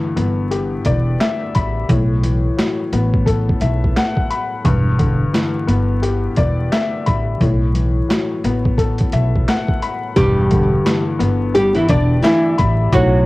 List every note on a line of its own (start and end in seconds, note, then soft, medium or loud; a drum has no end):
0.00 1.89 G2 medium
0.00 1.89 D3 medium
0.00 1.89 E3 medium
0.16 0.75 G1 medium
0.16 1.89 B3 medium
0.16 closed hi-hat medium
0.51 1.89 G4 medium
0.51 closed hi-hat medium
0.85 1.15 E1 loud
0.85 1.89 D5 medium
0.85 kick medium
0.85 closed hi-hat medium
1.20 1.89 E5 loud
1.20 snare loud
1.20 clap medium
1.20 closed hi-hat medium
1.55 1.84 A1 medium
1.55 1.89 B5 medium
1.55 kick medium
1.55 closed hi-hat medium
1.89 2.47 B1 loud
1.89 4.65 A2 medium
1.89 kick loud
1.89 closed hi-hat medium
2.22 4.64 E3 medium
2.22 closed hi-hat medium
2.57 4.64 F#3 medium
2.57 snare loud
2.57 clap loud
2.57 closed hi-hat medium
2.92 3.50 A1 medium
2.92 4.65 B3 medium
2.92 closed hi-hat medium
3.14 kick medium
3.26 4.64 A4 medium
3.26 kick medium
3.26 closed hi-hat medium
3.49 kick medium
3.61 3.90 B1 medium
3.61 4.65 E5 medium
3.61 closed hi-hat medium
3.84 kick medium
3.96 4.65 F#5 loud
3.96 snare loud
3.96 clap medium
3.96 closed hi-hat medium
4.17 kick medium
4.30 4.65 B5 medium
4.30 closed hi-hat medium
4.65 5.23 E1 loud
4.65 7.41 G2 medium
4.65 kick loud
4.65 closed hi-hat medium
4.99 7.40 D3 medium
4.99 kick loud
4.99 closed hi-hat medium
5.33 7.40 E3 medium
5.33 snare loud
5.33 clap loud
5.33 closed hi-hat medium
5.67 6.26 G1 medium
5.67 7.40 B3 medium
5.67 closed hi-hat medium
6.02 7.40 G4 medium
6.02 closed hi-hat medium
6.36 6.66 E1 loud
6.36 7.41 D5 medium
6.36 kick medium
6.36 closed hi-hat medium
6.72 7.41 E5 loud
6.72 snare loud
6.72 clap medium
6.72 closed hi-hat medium
7.06 7.36 A1 medium
7.06 7.41 B5 medium
7.06 kick medium
7.06 closed hi-hat medium
7.41 7.99 B1 loud
7.41 10.17 A2 medium
7.41 kick loud
7.41 closed hi-hat medium
7.74 10.16 E3 medium
7.74 closed hi-hat medium
8.09 10.16 F#3 medium
8.09 snare loud
8.09 clap loud
8.09 closed hi-hat medium
8.44 9.02 A1 medium
8.44 10.17 B3 medium
8.44 closed hi-hat medium
8.65 kick medium
8.78 10.16 A4 medium
8.78 kick medium
8.78 closed hi-hat medium
8.98 kick medium
8.98 closed hi-hat medium
9.12 9.42 B1 loud
9.12 10.16 E5 medium
9.12 closed hi-hat medium
9.36 kick medium
9.48 10.17 F#5 loud
9.48 snare loud
9.48 clap medium
9.48 closed hi-hat medium
9.69 kick medium
9.82 10.17 B5 medium
9.82 closed hi-hat medium
10.16 10.75 E1 loud
10.16 12.92 G2 medium
10.16 11.03 G3 medium
10.16 11.03 G4 loud
10.16 kick loud
10.16 closed hi-hat loud
10.51 12.92 D3 medium
10.51 kick loud
10.51 closed hi-hat medium
10.85 12.92 E3 medium
10.85 snare loud
10.85 clap loud
10.85 closed hi-hat medium
11.19 11.78 G1 medium
11.19 12.92 B3 loud
11.19 closed hi-hat medium
11.54 11.74 G3 medium
11.54 12.92 G4 medium
11.54 11.74 G4 medium
11.54 closed hi-hat medium
11.74 11.88 E3 medium
11.74 11.87 E4 medium
11.74 closed hi-hat medium
11.88 12.18 E1 loud
11.88 12.20 D4 medium
11.88 12.93 D5 medium
11.88 12.21 D5 medium
11.88 kick medium
11.88 closed hi-hat medium
12.22 12.54 E3 medium
12.22 12.54 E4 medium
12.22 12.92 E5 loud
12.22 snare loud
12.22 clap medium
12.22 closed hi-hat medium
12.58 12.88 A1 medium
12.58 12.92 B5 loud
12.58 kick medium
12.58 closed hi-hat medium
12.92 13.26 B1 loud
12.92 13.26 A2 medium
12.92 13.26 F#3 medium
12.92 13.26 F#4 loud
12.92 kick loud
12.92 closed hi-hat medium